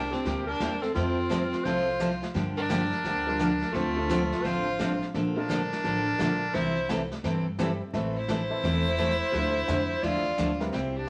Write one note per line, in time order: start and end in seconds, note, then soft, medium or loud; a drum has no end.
0.00 0.11 C2 medium
0.00 0.14 D4 medium
0.00 0.13 A#4 medium
0.11 0.46 C4 medium
0.11 0.46 G4 medium
0.11 snare soft
0.25 0.55 D2 medium
0.25 0.47 C3 medium
0.25 0.47 G3 medium
0.25 0.47 A#3 medium
0.25 0.47 E4 medium
0.25 0.47 G4 medium
0.25 brush sweep soft
0.25 kick soft
0.25 snare soft
0.47 0.83 D4 loud
0.47 0.83 A#4 medium
0.60 0.90 E2 medium
0.60 0.72 C3 medium
0.60 0.72 G3 medium
0.60 0.72 A#3 medium
0.60 0.72 E4 medium
0.60 0.72 G4 medium
0.60 kick soft
0.60 snare medium
0.60 hi-hat pedal soft
0.81 0.94 C4 medium
0.81 0.94 A4 medium
0.81 snare soft
0.94 1.51 F2 medium
0.94 1.17 F3 medium
0.94 1.66 C4 medium
0.94 1.17 C4 medium
0.94 1.17 E4 medium
0.94 1.66 F4 medium
0.94 1.17 A4 medium
0.94 brush sweep soft
0.94 kick soft
0.94 snare soft
1.29 1.41 F3 medium
1.29 1.41 C4 medium
1.29 1.42 E4 medium
1.29 1.42 A4 medium
1.29 kick soft
1.29 snare medium
1.29 hi-hat pedal medium
1.53 snare soft
1.64 2.21 C2 medium
1.64 1.87 F3 medium
1.64 1.87 C4 medium
1.64 1.87 E4 medium
1.64 2.22 F4 medium
1.64 1.87 A4 medium
1.64 2.22 C5 medium
1.64 brush sweep soft
1.64 kick soft
1.64 snare soft
2.00 2.11 F3 medium
2.00 2.11 C4 medium
2.00 2.12 E4 medium
2.00 2.12 A4 medium
2.00 kick soft
2.00 snare medium
2.00 hi-hat pedal medium
2.23 snare soft
2.34 2.91 G2 medium
2.34 2.56 D3 medium
2.34 2.56 F3 medium
2.34 2.56 A#3 medium
2.34 2.57 D4 medium
2.34 2.57 G4 medium
2.34 brush sweep soft
2.34 kick soft
2.34 snare soft
2.57 3.74 D4 loud
2.57 3.74 A#4 medium
2.69 2.81 D3 medium
2.69 2.81 F3 medium
2.69 2.81 A#3 medium
2.69 2.81 D4 medium
2.69 2.81 G4 medium
2.69 kick soft
2.69 snare medium
2.69 hi-hat pedal medium
2.92 snare soft
3.04 3.60 D2 medium
3.04 3.26 D3 medium
3.04 3.27 F3 medium
3.04 3.27 A#3 medium
3.04 3.27 D4 medium
3.04 3.27 G4 medium
3.04 brush sweep soft
3.04 kick soft
3.04 snare soft
3.27 3.38 F3 medium
3.27 3.38 G3 medium
3.27 3.38 A#3 medium
3.27 3.38 D4 medium
3.27 3.39 F4 medium
3.39 3.51 D3 medium
3.39 3.51 F3 medium
3.39 3.51 A#3 medium
3.39 3.51 D4 medium
3.39 3.51 G4 medium
3.39 kick soft
3.39 snare medium
3.39 hi-hat pedal medium
3.62 snare soft
3.72 4.30 D2 loud
3.72 3.96 D3 medium
3.72 3.96 F3 medium
3.72 4.45 A3 loud
3.72 3.96 C4 medium
3.72 3.96 D4 medium
3.72 4.45 F4 medium
3.72 3.97 A4 medium
3.72 brush sweep soft
3.72 kick soft
3.72 snare soft
3.96 4.08 F3 medium
3.96 4.08 A3 medium
3.96 4.08 C4 medium
3.96 4.09 D4 medium
3.96 4.09 F4 medium
4.09 4.21 D3 medium
4.09 4.21 F3 medium
4.09 4.21 C4 medium
4.09 4.21 D4 medium
4.09 4.21 A4 medium
4.09 kick soft
4.09 snare medium
4.09 hi-hat pedal medium
4.32 snare soft
4.43 5.00 A1 medium
4.43 4.66 D3 medium
4.43 4.66 F3 medium
4.43 4.66 C4 medium
4.43 4.66 D4 medium
4.43 5.01 F4 loud
4.43 4.66 A4 medium
4.43 5.01 C5 medium
4.43 brush sweep soft
4.43 kick soft
4.43 snare soft
4.79 4.91 D3 medium
4.79 4.99 F3 medium
4.79 4.91 F3 medium
4.79 4.99 A3 medium
4.79 4.91 C4 medium
4.79 4.99 C4 medium
4.79 4.91 D4 medium
4.79 4.99 D4 medium
4.79 5.00 F4 medium
4.79 4.91 A4 medium
4.79 kick soft
4.79 snare medium
4.79 hi-hat pedal medium
5.02 snare soft
5.14 5.70 A#1 medium
5.14 5.36 D3 medium
5.14 5.36 F3 medium
5.14 5.36 A#3 medium
5.14 5.36 D4 medium
5.14 5.36 A4 medium
5.14 brush sweep medium
5.14 kick soft
5.14 snare soft
5.36 5.48 F3 medium
5.36 5.48 A3 medium
5.36 5.48 A#3 medium
5.36 6.55 D4 loud
5.36 5.48 D4 medium
5.36 5.48 F4 medium
5.36 6.56 A#4 medium
5.49 5.60 D3 medium
5.49 5.60 F3 medium
5.49 5.61 A#3 medium
5.49 5.61 D4 medium
5.49 5.61 A4 medium
5.49 kick soft
5.49 snare medium
5.49 hi-hat pedal medium
5.72 snare soft
5.84 6.14 A1 medium
5.84 6.06 D3 medium
5.84 6.06 F3 medium
5.84 6.06 A#3 medium
5.84 6.06 D4 medium
5.84 6.06 A4 medium
5.84 brush sweep medium
5.84 kick soft
5.84 snare soft
6.18 6.49 A#1 medium
6.18 6.31 D3 medium
6.18 6.39 F3 medium
6.18 6.31 F3 medium
6.18 6.39 A3 medium
6.18 6.39 A#3 medium
6.18 6.31 A#3 medium
6.18 6.39 D4 medium
6.18 6.31 D4 medium
6.18 6.39 F4 medium
6.18 6.31 A4 medium
6.18 kick soft
6.18 snare medium
6.18 hi-hat pedal medium
6.54 7.10 C2 medium
6.54 6.76 C3 medium
6.54 6.76 E3 medium
6.54 6.76 G3 medium
6.54 6.76 C4 medium
6.54 6.89 E4 loud
6.54 6.76 E4 medium
6.54 6.76 A4 medium
6.54 6.89 C5 medium
6.54 brush sweep medium
6.54 kick soft
6.54 snare soft
6.89 7.01 C3 medium
6.89 7.01 E3 medium
6.89 7.01 G3 medium
6.89 7.01 C4 medium
6.89 7.01 E4 medium
6.89 7.01 A4 medium
6.89 kick soft
6.89 snare medium
6.89 hi-hat pedal medium
7.11 snare soft
7.24 7.80 G2 medium
7.24 7.45 C3 medium
7.24 7.46 E3 medium
7.24 7.46 G3 medium
7.24 7.46 C4 medium
7.24 7.46 E4 medium
7.24 7.46 A4 medium
7.24 brush sweep soft
7.24 kick soft
7.24 snare soft
7.59 7.70 C3 medium
7.59 7.70 E3 medium
7.59 7.79 G3 medium
7.59 7.70 G3 medium
7.59 7.79 A3 medium
7.59 7.70 C4 medium
7.59 7.79 C4 medium
7.59 7.71 E4 medium
7.59 7.79 E4 medium
7.59 7.79 G4 medium
7.59 7.71 A4 medium
7.59 kick soft
7.59 snare medium
7.59 hi-hat pedal medium
7.93 8.49 A1 medium
7.93 8.13 E3 medium
7.93 8.15 E3 medium
7.93 8.13 A3 medium
7.93 8.16 A3 medium
7.93 8.13 C4 medium
7.93 8.16 C4 medium
7.93 8.14 E4 medium
7.93 8.16 E4 medium
7.93 8.14 A4 medium
7.93 8.16 A4 medium
7.93 brush sweep soft
7.93 kick soft
7.93 snare soft
8.16 10.05 E4 loud
8.16 10.04 C5 medium
8.28 8.40 E3 medium
8.28 8.40 A3 medium
8.28 8.40 C4 medium
8.28 8.40 E4 medium
8.28 8.40 A4 medium
8.28 kick soft
8.28 snare medium
8.28 hi-hat pedal medium
8.50 8.95 E3 medium
8.50 8.96 A3 medium
8.50 8.96 C4 medium
8.50 8.96 E4 medium
8.50 8.96 A4 medium
8.63 9.19 E1 medium
8.63 8.85 E3 medium
8.63 8.85 A3 medium
8.63 8.85 C4 medium
8.63 8.85 E4 medium
8.63 8.85 A4 medium
8.63 brush sweep soft
8.63 kick soft
8.63 snare soft
8.98 9.10 E3 medium
8.98 9.10 A3 medium
8.98 9.10 C4 medium
8.98 9.10 E4 medium
8.98 9.10 A4 medium
8.98 kick soft
8.98 snare medium
8.98 hi-hat pedal medium
9.32 9.61 D2 medium
9.32 9.55 D3 medium
9.32 9.53 F3 medium
9.32 9.55 F3 medium
9.32 9.53 A3 medium
9.32 9.55 A3 medium
9.32 9.53 D4 medium
9.32 9.53 E4 medium
9.32 9.55 E4 medium
9.32 9.53 F4 medium
9.32 brush sweep soft
9.32 kick soft
9.32 snare soft
9.68 9.98 F2 medium
9.68 9.79 D3 medium
9.68 9.80 F3 medium
9.68 9.80 A3 medium
9.68 9.80 E4 medium
9.68 kick soft
9.68 snare medium
9.68 hi-hat pedal medium
10.03 10.33 E2 medium
10.03 10.25 D3 soft
10.03 10.25 F3 medium
10.03 10.25 A3 medium
10.03 10.25 E4 medium
10.03 10.60 F4 loud
10.03 10.60 D5 medium
10.03 brush sweep soft
10.03 kick soft
10.03 snare soft
10.38 10.68 D2 medium
10.38 10.49 D3 medium
10.38 10.50 F3 medium
10.38 10.50 A3 medium
10.38 10.50 E4 medium
10.38 kick soft
10.38 snare medium
10.38 hi-hat pedal medium
10.60 10.71 E3 medium
10.60 10.71 G3 medium
10.60 10.72 C4 medium
10.60 10.72 E4 medium
10.60 10.72 A#4 medium
10.60 snare soft
10.72 11.09 C2 medium
10.72 10.94 C3 medium
10.72 10.94 G3 medium
10.72 10.95 C4 medium
10.72 10.95 E4 medium
10.72 10.95 G4 medium
10.72 brush sweep soft
10.72 kick soft
10.72 snare soft
10.95 11.09 D4 medium
10.95 11.09 G4 medium